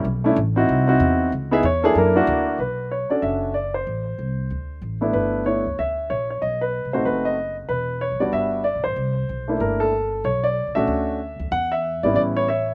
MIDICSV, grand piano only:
0, 0, Header, 1, 2, 480
1, 0, Start_track
1, 0, Key_signature, 2, "minor"
1, 0, Tempo, 318810
1, 78, Time_signature, 4, 2, 24, 8
1, 19183, End_track
2, 0, Start_track
2, 0, Title_t, "Grand piano"
2, 0, Program_c, 0, 0
2, 366, Note_on_c, 0, 57, 72
2, 380, Note_on_c, 0, 61, 60
2, 380, Note_on_c, 0, 62, 61
2, 388, Note_on_c, 0, 64, 79
2, 533, Note_off_c, 0, 57, 0
2, 540, Note_off_c, 0, 61, 0
2, 540, Note_off_c, 0, 62, 0
2, 544, Note_off_c, 0, 64, 0
2, 844, Note_on_c, 0, 60, 70
2, 853, Note_on_c, 0, 63, 60
2, 853, Note_on_c, 0, 64, 61
2, 864, Note_on_c, 0, 66, 78
2, 1294, Note_off_c, 0, 60, 0
2, 1298, Note_off_c, 0, 63, 0
2, 1298, Note_off_c, 0, 64, 0
2, 1303, Note_off_c, 0, 66, 0
2, 1317, Note_on_c, 0, 60, 71
2, 1324, Note_on_c, 0, 63, 64
2, 1332, Note_on_c, 0, 64, 64
2, 1337, Note_on_c, 0, 66, 77
2, 1943, Note_off_c, 0, 60, 0
2, 1946, Note_off_c, 0, 63, 0
2, 1950, Note_off_c, 0, 64, 0
2, 1952, Note_off_c, 0, 66, 0
2, 2278, Note_on_c, 0, 59, 72
2, 2282, Note_on_c, 0, 63, 62
2, 2288, Note_on_c, 0, 64, 70
2, 2296, Note_on_c, 0, 68, 81
2, 2304, Note_on_c, 0, 76, 88
2, 2441, Note_off_c, 0, 59, 0
2, 2443, Note_off_c, 0, 63, 0
2, 2446, Note_off_c, 0, 64, 0
2, 2450, Note_off_c, 0, 68, 0
2, 2467, Note_off_c, 0, 76, 0
2, 2488, Note_on_c, 0, 73, 83
2, 2751, Note_on_c, 0, 58, 68
2, 2760, Note_on_c, 0, 62, 64
2, 2761, Note_off_c, 0, 73, 0
2, 2765, Note_on_c, 0, 64, 71
2, 2767, Note_on_c, 0, 69, 83
2, 2784, Note_on_c, 0, 68, 93
2, 2946, Note_off_c, 0, 68, 0
2, 2981, Note_on_c, 0, 70, 83
2, 3201, Note_off_c, 0, 58, 0
2, 3205, Note_off_c, 0, 62, 0
2, 3208, Note_off_c, 0, 64, 0
2, 3209, Note_off_c, 0, 69, 0
2, 3241, Note_on_c, 0, 58, 72
2, 3242, Note_on_c, 0, 62, 67
2, 3249, Note_on_c, 0, 64, 66
2, 3260, Note_on_c, 0, 66, 85
2, 3764, Note_off_c, 0, 70, 0
2, 3860, Note_off_c, 0, 58, 0
2, 3861, Note_off_c, 0, 62, 0
2, 3864, Note_off_c, 0, 64, 0
2, 3869, Note_off_c, 0, 66, 0
2, 3910, Note_on_c, 0, 71, 63
2, 4388, Note_on_c, 0, 73, 63
2, 4393, Note_off_c, 0, 71, 0
2, 4663, Note_on_c, 0, 61, 45
2, 4671, Note_on_c, 0, 62, 43
2, 4673, Note_on_c, 0, 74, 63
2, 4676, Note_on_c, 0, 66, 42
2, 4682, Note_on_c, 0, 69, 50
2, 4685, Note_off_c, 0, 73, 0
2, 4840, Note_off_c, 0, 74, 0
2, 4851, Note_on_c, 0, 76, 69
2, 5291, Note_off_c, 0, 61, 0
2, 5295, Note_off_c, 0, 62, 0
2, 5297, Note_off_c, 0, 66, 0
2, 5301, Note_off_c, 0, 69, 0
2, 5332, Note_on_c, 0, 74, 66
2, 5345, Note_off_c, 0, 76, 0
2, 5636, Note_on_c, 0, 72, 65
2, 5637, Note_off_c, 0, 74, 0
2, 7494, Note_off_c, 0, 72, 0
2, 7544, Note_on_c, 0, 57, 56
2, 7546, Note_on_c, 0, 59, 49
2, 7558, Note_on_c, 0, 62, 52
2, 7559, Note_on_c, 0, 64, 65
2, 7729, Note_on_c, 0, 71, 69
2, 8174, Note_off_c, 0, 57, 0
2, 8175, Note_off_c, 0, 59, 0
2, 8178, Note_off_c, 0, 71, 0
2, 8181, Note_off_c, 0, 62, 0
2, 8181, Note_off_c, 0, 64, 0
2, 8210, Note_on_c, 0, 57, 44
2, 8217, Note_on_c, 0, 59, 40
2, 8220, Note_on_c, 0, 73, 71
2, 8228, Note_on_c, 0, 62, 40
2, 8230, Note_on_c, 0, 64, 46
2, 8480, Note_off_c, 0, 57, 0
2, 8483, Note_off_c, 0, 59, 0
2, 8488, Note_off_c, 0, 62, 0
2, 8490, Note_off_c, 0, 64, 0
2, 8712, Note_off_c, 0, 73, 0
2, 8715, Note_on_c, 0, 76, 75
2, 9184, Note_on_c, 0, 73, 68
2, 9199, Note_off_c, 0, 76, 0
2, 9457, Note_off_c, 0, 73, 0
2, 9492, Note_on_c, 0, 73, 61
2, 9653, Note_off_c, 0, 73, 0
2, 9661, Note_on_c, 0, 75, 71
2, 9958, Note_on_c, 0, 71, 65
2, 9965, Note_off_c, 0, 75, 0
2, 10403, Note_off_c, 0, 71, 0
2, 10439, Note_on_c, 0, 72, 64
2, 10442, Note_on_c, 0, 60, 48
2, 10446, Note_on_c, 0, 57, 50
2, 10451, Note_on_c, 0, 63, 50
2, 10457, Note_on_c, 0, 66, 58
2, 10620, Note_on_c, 0, 71, 68
2, 10625, Note_off_c, 0, 72, 0
2, 10917, Note_on_c, 0, 75, 77
2, 10925, Note_off_c, 0, 71, 0
2, 11065, Note_off_c, 0, 60, 0
2, 11067, Note_off_c, 0, 57, 0
2, 11070, Note_off_c, 0, 63, 0
2, 11073, Note_off_c, 0, 66, 0
2, 11364, Note_off_c, 0, 75, 0
2, 11572, Note_on_c, 0, 71, 72
2, 12064, Note_on_c, 0, 73, 75
2, 12071, Note_off_c, 0, 71, 0
2, 12348, Note_on_c, 0, 74, 68
2, 12349, Note_on_c, 0, 55, 49
2, 12355, Note_on_c, 0, 59, 43
2, 12360, Note_on_c, 0, 62, 44
2, 12369, Note_off_c, 0, 73, 0
2, 12373, Note_on_c, 0, 66, 53
2, 12523, Note_off_c, 0, 74, 0
2, 12540, Note_on_c, 0, 76, 82
2, 12980, Note_off_c, 0, 55, 0
2, 12984, Note_off_c, 0, 59, 0
2, 12986, Note_off_c, 0, 62, 0
2, 12993, Note_off_c, 0, 66, 0
2, 13008, Note_on_c, 0, 74, 73
2, 13035, Note_off_c, 0, 76, 0
2, 13291, Note_off_c, 0, 74, 0
2, 13305, Note_on_c, 0, 72, 69
2, 14271, Note_on_c, 0, 57, 49
2, 14282, Note_on_c, 0, 62, 45
2, 14283, Note_on_c, 0, 58, 45
2, 14294, Note_on_c, 0, 64, 56
2, 14397, Note_off_c, 0, 72, 0
2, 14466, Note_on_c, 0, 70, 76
2, 14756, Note_on_c, 0, 69, 86
2, 14772, Note_off_c, 0, 70, 0
2, 14903, Note_off_c, 0, 57, 0
2, 14909, Note_off_c, 0, 58, 0
2, 14909, Note_off_c, 0, 62, 0
2, 14915, Note_off_c, 0, 64, 0
2, 15430, Note_on_c, 0, 73, 79
2, 15443, Note_off_c, 0, 69, 0
2, 15712, Note_on_c, 0, 74, 77
2, 15735, Note_off_c, 0, 73, 0
2, 16165, Note_off_c, 0, 74, 0
2, 16186, Note_on_c, 0, 76, 86
2, 16195, Note_on_c, 0, 57, 59
2, 16201, Note_on_c, 0, 61, 55
2, 16204, Note_on_c, 0, 62, 56
2, 16210, Note_on_c, 0, 66, 60
2, 16828, Note_off_c, 0, 57, 0
2, 16831, Note_off_c, 0, 61, 0
2, 16833, Note_off_c, 0, 62, 0
2, 16836, Note_off_c, 0, 66, 0
2, 17282, Note_off_c, 0, 76, 0
2, 17342, Note_on_c, 0, 78, 94
2, 17640, Note_on_c, 0, 76, 83
2, 17654, Note_off_c, 0, 78, 0
2, 18117, Note_on_c, 0, 74, 78
2, 18133, Note_on_c, 0, 59, 48
2, 18135, Note_on_c, 0, 55, 49
2, 18141, Note_off_c, 0, 76, 0
2, 18144, Note_on_c, 0, 61, 44
2, 18148, Note_on_c, 0, 64, 58
2, 18282, Note_off_c, 0, 74, 0
2, 18304, Note_on_c, 0, 74, 89
2, 18380, Note_off_c, 0, 74, 0
2, 18617, Note_on_c, 0, 73, 87
2, 18761, Note_off_c, 0, 55, 0
2, 18761, Note_off_c, 0, 59, 0
2, 18766, Note_off_c, 0, 61, 0
2, 18768, Note_off_c, 0, 64, 0
2, 18795, Note_off_c, 0, 73, 0
2, 18796, Note_on_c, 0, 76, 78
2, 18817, Note_on_c, 0, 73, 66
2, 19183, Note_off_c, 0, 73, 0
2, 19183, Note_off_c, 0, 76, 0
2, 19183, End_track
0, 0, End_of_file